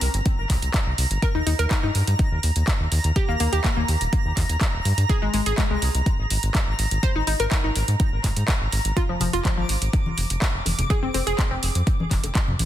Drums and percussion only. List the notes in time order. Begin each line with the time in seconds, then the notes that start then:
0.01 open hi-hat
0.14 closed hi-hat
0.26 kick, closed hi-hat
0.50 kick, clap, open hi-hat
0.62 closed hi-hat
0.74 kick, clap, closed hi-hat
0.98 open hi-hat
1.11 closed hi-hat
1.22 kick, closed hi-hat
1.47 open hi-hat
1.59 closed hi-hat
1.71 kick, clap, closed hi-hat
1.95 open hi-hat
2.07 closed hi-hat
2.19 kick, closed hi-hat
2.43 open hi-hat
2.56 closed hi-hat
2.68 kick, clap, closed hi-hat
2.92 open hi-hat
3.04 closed hi-hat
3.16 kick, closed hi-hat
3.40 open hi-hat
3.53 closed hi-hat
3.64 kick, clap, closed hi-hat
3.88 open hi-hat
4.01 closed hi-hat
4.13 kick, closed hi-hat
4.37 kick, clap, open hi-hat
4.49 closed hi-hat
4.61 kick, clap, closed hi-hat
4.85 open hi-hat
4.98 closed hi-hat
5.09 kick, closed hi-hat
5.34 open hi-hat
5.46 closed hi-hat
5.58 kick, clap, closed hi-hat
5.82 open hi-hat
5.95 closed hi-hat
6.06 kick, closed hi-hat
6.30 open hi-hat
6.43 closed hi-hat
6.55 kick, clap, closed hi-hat
6.79 open hi-hat
6.91 closed hi-hat
7.03 kick, closed hi-hat
7.27 open hi-hat
7.40 closed hi-hat
7.51 kick, clap, closed hi-hat
7.76 open hi-hat
7.88 closed hi-hat
8.00 kick, closed hi-hat
8.24 kick, clap, open hi-hat
8.37 closed hi-hat
8.48 kick, clap, closed hi-hat
8.72 open hi-hat
8.85 closed hi-hat
8.97 kick, closed hi-hat
9.20 open hi-hat, low conga
9.33 closed hi-hat
9.45 kick, clap, closed hi-hat
9.69 open hi-hat
9.82 closed hi-hat
9.93 kick, closed hi-hat
10.06 high conga
10.18 open hi-hat
10.30 closed hi-hat
10.42 kick, clap, closed hi-hat
10.66 open hi-hat, high bongo, high conga
10.79 closed hi-hat, low conga
10.90 kick, closed hi-hat
11.14 open hi-hat, high bongo
11.27 closed hi-hat
11.39 kick, clap, closed hi-hat
11.63 open hi-hat
11.75 closed hi-hat
11.87 kick, closed hi-hat
12.00 high conga
12.11 kick, clap, open hi-hat, high bongo
12.24 closed hi-hat, high bongo
12.35 kick, clap, closed hi-hat
12.48 low conga
12.59 open hi-hat, high conga